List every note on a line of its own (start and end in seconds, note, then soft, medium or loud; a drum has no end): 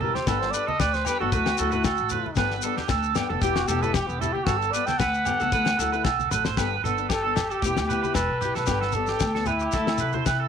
0.00 0.11 E1 medium
0.00 0.17 G3 medium
0.00 0.18 B3 medium
0.00 0.18 E4 medium
0.00 0.19 G4 medium
0.00 0.14 A4 medium
0.00 0.16 A#4 medium
0.00 high conga medium
0.00 low conga medium
0.15 0.26 G4 medium
0.15 0.29 C5 medium
0.15 snare soft
0.15 high conga medium
0.27 0.49 G1 loud
0.27 0.44 G3 medium
0.27 0.44 B3 medium
0.27 0.44 D4 medium
0.27 0.52 A4 medium
0.27 0.45 A4 medium
0.27 0.42 B4 medium
0.27 kick medium
0.27 snare medium
0.27 low agogo medium
0.27 shekere medium
0.41 0.52 C5 medium
0.41 snare soft
0.51 0.70 G3 medium
0.51 0.70 B3 medium
0.51 0.67 B4 medium
0.51 0.69 D5 medium
0.51 shekere medium
0.55 0.70 D4 medium
0.55 0.71 A4 medium
0.67 0.79 A4 medium
0.67 0.82 D#5 loud
0.67 high conga medium
0.79 1.02 D2 loud
0.79 1.04 B4 medium
0.79 0.96 D5 medium
0.79 kick medium
0.79 snare medium
0.79 low agogo medium
0.79 shekere medium
0.94 1.09 C5 medium
0.94 snare soft
0.94 shekere soft
1.05 1.20 G3 medium
1.05 1.20 B3 medium
1.05 1.20 D4 medium
1.05 1.19 G4 medium
1.05 1.19 A4 medium
1.05 1.20 B4 loud
1.05 high conga medium
1.05 low conga medium
1.05 low agogo medium
1.05 shekere medium
1.20 1.31 G1 medium
1.20 1.33 B3 soft
1.20 1.33 D4 medium
1.20 2.47 F#4 medium
1.20 1.32 A4 medium
1.32 1.55 D2 loud
1.32 1.49 F#3 medium
1.32 1.49 A3 medium
1.32 1.50 E4 medium
1.32 1.50 A4 medium
1.32 1.57 B4 medium
1.32 kick medium
1.32 shekere loud
1.46 snare medium
1.46 low agogo medium
1.46 shekere soft
1.58 1.93 D2 medium
1.58 1.73 F#3 medium
1.58 1.73 A3 medium
1.58 1.73 E4 medium
1.58 1.72 A4 medium
1.58 shekere medium
1.72 1.89 A3 soft
1.72 1.88 E4 medium
1.72 1.88 A4 medium
1.72 1.84 B4 medium
1.72 low conga medium
1.72 shekere soft
1.84 2.10 A4 medium
1.84 kick medium
1.84 snare medium
1.84 low agogo medium
1.84 shekere loud
1.97 2.22 A1 medium
1.97 shekere soft
2.09 2.28 F#3 medium
2.09 2.28 A3 medium
2.09 2.24 B4 medium
2.09 high conga medium
2.09 low conga medium
2.09 shekere medium
2.14 2.29 E4 medium
2.14 2.29 A4 medium
2.26 high conga medium
2.35 2.59 G1 loud
2.35 2.54 G3 medium
2.35 2.54 B3 medium
2.35 2.54 D4 medium
2.35 2.54 A4 loud
2.35 2.62 B4 loud
2.35 kick medium
2.35 snare medium
2.35 low agogo medium
2.35 shekere medium
2.51 snare soft
2.62 2.80 G3 medium
2.62 2.80 B3 medium
2.62 2.81 D4 medium
2.62 2.77 A4 medium
2.62 shekere medium
2.66 2.81 A4 medium
2.77 2.89 G4 medium
2.77 snare soft
2.77 high conga medium
2.88 3.12 D2 loud
2.88 3.15 A4 medium
2.88 kick medium
2.88 snare medium
2.88 low agogo medium
2.88 shekere medium
3.03 shekere soft
3.15 3.30 G3 medium
3.15 3.30 B3 medium
3.15 3.30 D4 medium
3.15 3.29 G4 medium
3.15 3.29 A4 medium
3.15 snare medium
3.15 high conga medium
3.15 low conga medium
3.15 low agogo medium
3.15 shekere medium
3.29 3.41 F1 medium
3.29 3.42 B3 soft
3.29 3.43 D4 soft
3.29 3.41 A4 medium
3.29 3.42 A4 medium
3.41 3.64 E1 medium
3.41 3.59 G3 medium
3.41 3.59 B3 medium
3.41 3.59 E4 medium
3.41 3.58 G4 medium
3.41 3.67 G4 loud
3.41 3.60 G4 medium
3.41 kick medium
3.41 shekere loud
3.56 3.69 F#4 medium
3.56 snare medium
3.56 low agogo medium
3.56 shekere soft
3.67 4.03 E1 medium
3.67 3.83 B3 medium
3.67 3.83 E4 medium
3.67 3.84 G4 medium
3.67 3.81 A4 medium
3.67 muted steel-string acoustic guitar stroke medium
3.67 shekere medium
3.72 3.82 G4 medium
3.82 3.99 B3 soft
3.82 3.98 E4 soft
3.82 3.98 G4 medium
3.82 3.96 A4 loud
3.82 3.94 B4 medium
3.82 low conga medium
3.82 shekere soft
3.94 4.09 G4 medium
3.94 4.19 G4 medium
3.94 kick medium
3.94 snare medium
3.94 low agogo medium
3.94 shekere medium
4.07 4.31 E1 medium
4.07 4.22 B3 medium
4.07 shekere soft
4.20 4.37 G3 medium
4.20 4.38 B3 medium
4.20 4.34 E4 medium
4.20 4.38 E4 medium
4.20 4.39 G4 medium
4.20 4.34 A4 medium
4.20 high conga medium
4.20 low conga medium
4.20 shekere medium
4.33 4.45 G4 medium
4.33 4.46 G4 medium
4.33 high conga medium
4.44 4.69 G1 loud
4.44 4.64 G3 medium
4.44 4.59 F#4 medium
4.44 4.72 A4 medium
4.44 kick loud
4.44 snare medium
4.44 low agogo medium
4.48 4.64 B3 medium
4.48 4.64 D4 medium
4.48 4.64 A4 medium
4.48 shekere medium
4.58 4.73 A4 medium
4.62 shekere soft
4.72 4.90 G3 medium
4.72 4.91 B3 medium
4.72 4.87 B4 medium
4.72 4.87 D5 medium
4.72 shekere medium
4.76 4.91 A4 medium
4.86 4.99 A4 medium
4.86 4.99 G5 loud
4.86 snare soft
4.86 high conga medium
4.86 shekere soft
4.98 5.23 D2 medium
4.98 5.25 B4 medium
4.98 6.44 F#5 loud
4.98 kick medium
4.98 snare medium
4.98 low agogo medium
4.98 shekere medium
5.14 shekere soft
5.25 5.40 G3 medium
5.25 5.41 B3 medium
5.25 5.41 D4 medium
5.25 5.40 G4 medium
5.25 5.39 A4 medium
5.25 high conga medium
5.25 low conga medium
5.25 low agogo medium
5.25 shekere medium
5.40 5.51 C#2 medium
5.40 5.53 B3 soft
5.40 5.53 D4 soft
5.40 5.53 A4 medium
5.40 5.52 A4 medium
5.40 shekere soft
5.52 5.75 D2 medium
5.52 5.69 F#3 medium
5.52 5.69 A3 medium
5.52 5.70 E4 medium
5.52 5.70 A4 medium
5.52 5.78 B4 loud
5.52 kick medium
5.52 shekere medium
5.65 snare medium
5.65 low agogo medium
5.65 shekere soft
5.79 6.01 D2 medium
5.79 5.93 F#3 medium
5.79 5.94 A3 medium
5.79 5.93 E4 medium
5.79 5.92 A4 medium
5.79 shekere medium
5.92 6.09 E4 medium
5.92 6.08 A4 medium
5.92 6.04 B4 medium
5.92 shekere soft
6.04 6.29 B1 medium
6.04 6.30 A4 medium
6.04 kick medium
6.04 snare medium
6.04 low agogo medium
6.04 shekere medium
6.20 high conga medium
6.20 shekere soft
6.31 6.55 A1 medium
6.31 6.48 F#3 medium
6.31 6.49 A3 medium
6.31 6.49 A4 medium
6.31 6.45 B4 medium
6.31 high tom soft
6.31 low conga medium
6.31 shekere medium
6.45 6.57 C5 medium
6.45 snare medium
6.45 low conga medium
6.45 shekere soft
6.57 6.80 G1 medium
6.57 6.74 G3 medium
6.57 6.74 B3 medium
6.57 6.75 D4 medium
6.57 6.75 A4 medium
6.57 6.83 B4 loud
6.57 kick medium
6.57 snare medium
6.57 low agogo medium
6.57 shekere medium
6.84 7.51 G1 medium
6.84 6.99 B3 medium
6.84 6.98 D4 medium
6.84 7.09 A4 medium
6.84 6.99 A4 medium
6.84 muted steel-string acoustic guitar stroke medium
6.84 low conga medium
6.84 shekere medium
6.98 7.14 B3 soft
6.98 7.14 D4 soft
6.98 shekere soft
7.09 7.23 G4 medium
7.09 7.53 A4 loud
7.09 kick medium
7.09 snare medium
7.09 low agogo medium
7.09 shekere medium
7.24 7.40 B3 soft
7.24 7.40 D4 soft
7.24 7.36 A4 medium
7.24 7.39 A4 soft
7.36 7.50 G4 medium
7.36 snare medium
7.36 high conga medium
7.36 low conga medium
7.36 low agogo medium
7.36 shekere medium
7.50 8.14 G4 loud
7.50 7.61 A4 medium
7.50 shekere soft
7.62 7.75 E1 medium
7.62 7.80 G3 medium
7.62 7.80 B3 medium
7.62 7.81 E4 medium
7.62 7.87 G4 medium
7.62 7.81 G4 medium
7.62 kick medium
7.62 snare soft
7.62 shekere medium
7.77 8.00 D2 loud
7.77 snare medium
7.77 low agogo medium
7.89 8.04 G3 medium
7.89 8.04 B3 medium
7.89 8.04 E4 medium
7.89 8.03 G4 medium
7.89 8.01 B4 medium
7.89 shekere medium
8.03 8.20 E4 soft
8.03 8.19 G4 medium
8.03 8.14 B4 medium
8.03 high conga medium
8.03 shekere soft
8.14 8.27 E1 loud
8.14 8.40 A4 medium
8.14 8.53 B4 loud
8.14 kick medium
8.14 snare medium
8.14 low agogo medium
8.14 shekere medium
8.30 8.52 B1 medium
8.41 8.58 G3 soft
8.41 8.59 E4 medium
8.41 8.55 G4 medium
8.41 8.60 G4 medium
8.41 muted steel-string acoustic guitar stroke medium
8.41 low conga medium
8.41 shekere medium
8.55 8.66 B1 medium
8.55 8.66 A4 medium
8.55 8.96 B4 medium
8.55 snare soft
8.55 shekere soft
8.66 9.13 G1 loud
8.66 8.85 G3 medium
8.66 8.85 B3 medium
8.66 8.85 D4 medium
8.66 8.81 G4 medium
8.66 8.86 A4 medium
8.66 kick medium
8.66 snare medium
8.66 low agogo medium
8.66 shekere medium
8.81 9.07 A4 medium
8.81 snare soft
8.92 9.09 G3 medium
8.92 9.09 B3 medium
8.92 9.49 A4 medium
8.92 low conga medium
8.92 shekere medium
8.96 9.09 D4 medium
8.96 9.08 A4 medium
9.07 9.25 D4 soft
9.07 9.34 G4 medium
9.07 9.24 A4 medium
9.07 snare soft
9.07 shekere soft
9.11 9.25 B3 soft
9.19 9.66 D2 medium
9.19 kick medium
9.19 snare medium
9.19 low agogo medium
9.19 shekere medium
9.35 9.51 B3 soft
9.35 9.51 D4 soft
9.35 9.46 A4 medium
9.35 9.50 A4 soft
9.35 snare soft
9.46 10.48 E4 loud
9.46 9.60 B4 medium
9.46 high conga medium
9.46 low conga medium
9.46 low agogo medium
9.46 shekere medium
9.60 9.73 G4 medium
9.60 shekere soft
9.72 9.96 D2 medium
9.72 9.90 F#3 medium
9.72 9.91 E4 medium
9.72 9.99 A4 medium
9.72 9.91 A4 medium
9.72 muted steel-string acoustic guitar stroke medium
9.72 kick medium
9.72 snare soft
9.72 shekere medium
9.87 snare medium
9.87 low agogo medium
9.98 10.23 C3 medium
9.98 10.14 F#3 medium
9.98 10.13 B4 medium
9.98 muted steel-string acoustic guitar stroke medium
9.98 shekere medium
10.02 10.13 A4 medium
10.12 10.30 E4 medium
10.12 10.29 A4 medium
10.12 10.25 C5 medium
10.12 high conga medium
10.12 shekere soft
10.17 10.30 A3 soft
10.26 10.48 C3 loud
10.26 10.39 B4 medium
10.26 kick medium
10.26 snare medium
10.26 low agogo medium
10.26 shekere medium
10.40 10.48 A4 medium